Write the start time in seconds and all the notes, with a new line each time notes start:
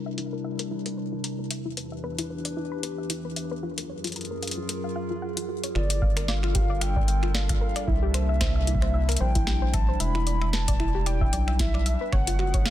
Already playing: C3 G3 D4 E4 A#4
0.06 E5
0.18 E4, closed hi-hat
0.33 A#4
0.44 E5
0.59 A#4, closed hi-hat
0.71 E4
0.86 A#4, closed hi-hat
0.97 C5
1.12 E4
1.24 A#5, closed hi-hat
1.39 A#4
1.51 E2 E3 D4 G4 B4 E5, closed hi-hat
1.65 E4
1.77 B4, closed hi-hat
1.92 E5
2.04 B4
2.19 E4, closed hi-hat
2.30 B4
2.45 D5, closed hi-hat
2.57 E4
2.72 B5
2.83 B4, closed hi-hat
2.98 E5
3.10 E4, closed hi-hat
3.25 B4
3.36 E5, closed hi-hat
3.51 B4
3.63 F#2 F#3 F4 G#4 A#4
3.78 A#4, closed hi-hat
3.89 C#5
4.04 F4, closed hi-hat
4.07 closed hi-hat
4.12 A#5, closed hi-hat
4.16 closed hi-hat
4.21 closed hi-hat
4.25 closed hi-hat
4.31 A#4
4.43 F5, closed hi-hat
4.47 closed hi-hat
4.51 closed hi-hat
4.57 F4
4.69 A#4, closed hi-hat
4.84 F5
4.96 F5
5.11 F4
5.22 F#5
5.37 F4, closed hi-hat
5.49 F#4
5.64 C#5, closed hi-hat
5.75 G1 G3 D4 F4 A4 A#4 D5, finger snap
5.90 D5, closed hi-hat
6.02 F5, kick
6.17 A#4, finger snap, closed hi-hat
6.28 D5 F5, snare
6.43 F4, finger snap
6.55 G4, kick, closed hi-hat
6.70 D5
6.81 F5 G5, finger snap, closed hi-hat
6.96 D5, kick
7.08 F5, closed hi-hat
7.23 F4, finger snap
7.35 D5 F5, snare
7.49 F5, finger snap, kick, closed hi-hat
7.61 A#4
7.76 D5, finger snap, closed hi-hat
7.88 C2 C3 A#3 E4 E5, kick
8.02 G4
8.14 C5, finger snap, closed hi-hat
8.29 E5
8.41 C5, finger snap, kick, snare, closed hi-hat
8.56 E5
8.67 E4, closed hi-hat
8.75 kick
8.82 C5, finger snap
8.94 E5
9.09 A#4, finger snap, closed hi-hat
9.12 closed hi-hat
9.17 A#1 C5 G5, closed hi-hat
9.35 E4, kick, closed hi-hat
9.47 G4, finger snap, snare
9.62 C5
9.74 E5 A5, finger snap, kick, closed hi-hat
9.88 C5
10.00 E1 E5 B5, closed hi-hat
10.15 E4, finger snap
10.27 D5, closed hi-hat
10.41 E5, finger snap
10.53 B4 A5, snare
10.68 D5, kick, closed hi-hat
10.80 E4, finger snap
10.95 G4
11.06 D5 G5, finger snap, closed hi-hat
11.21 E5, kick
11.33 B1 D5, closed hi-hat
11.48 E5, finger snap
11.59 E4 E5, kick, snare, closed hi-hat
11.74 D5, finger snap
11.86 E5, closed hi-hat
12.01 B4
12.12 F#1 F3 F#3 C#4 G#4 A#4 C#5 F#5, finger snap, kick
12.27 F4, closed hi-hat
12.39 F#4, finger snap
12.54 C#5, kick, closed hi-hat
12.66 F5, snare